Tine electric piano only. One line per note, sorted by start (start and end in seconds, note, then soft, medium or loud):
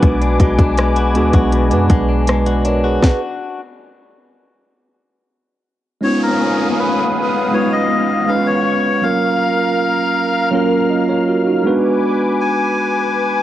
0.00 1.04 G#3 medium
0.00 1.04 B3 medium
0.00 1.08 D4 medium
0.00 1.05 F#4 medium
0.00 1.05 B4 loud
1.14 1.67 G#3 medium
1.14 1.67 B3 medium
1.14 1.68 D4 medium
1.14 1.68 F#4 medium
1.14 1.69 G#4 loud
1.70 2.92 G#3 medium
1.70 2.93 B3 medium
1.70 2.93 D4 medium
1.70 2.94 F#4 medium
1.70 2.29 B4 medium
2.46 2.64 B4 medium
2.46 2.64 D5 medium
2.65 2.83 A#4 medium
2.65 2.83 C#5 medium
2.84 3.20 G#4 medium
2.84 3.20 B4 medium
6.01 7.41 G#3 medium
6.01 7.43 B3 medium
6.01 7.42 C#4 medium
6.01 7.42 D#4 medium
6.01 7.43 F4 medium
7.51 8.25 G#3 medium
7.51 8.27 C#4 medium
7.51 8.28 D#4 medium
7.51 8.28 F4 medium
7.51 8.29 B4 medium
8.26 8.96 G#3 medium
8.26 8.97 B3 medium
8.26 8.97 C#4 medium
8.26 8.35 D#4 medium
8.26 8.98 B4 medium
8.35 9.01 F4 medium
9.01 10.41 F#3 medium
9.01 10.42 A#3 medium
9.01 10.42 C#4 medium
9.01 10.43 F4 medium
9.01 10.43 A#4 medium
10.51 11.64 F#3 loud
10.51 11.65 A#3 medium
10.51 11.65 C#4 medium
10.51 10.91 F4 medium
10.51 10.91 A#4 loud
10.90 11.08 D#5 medium
11.09 11.27 A#4 medium
11.09 11.27 C#5 medium
11.28 11.45 F#4 medium
11.28 11.46 A#4 medium
11.47 11.82 D#4 medium
11.47 11.65 F#4 medium
11.63 13.04 G#3 loud
11.63 13.04 B3 medium
11.63 13.04 D4 medium
11.63 13.05 F#4 medium
11.63 13.05 B4 loud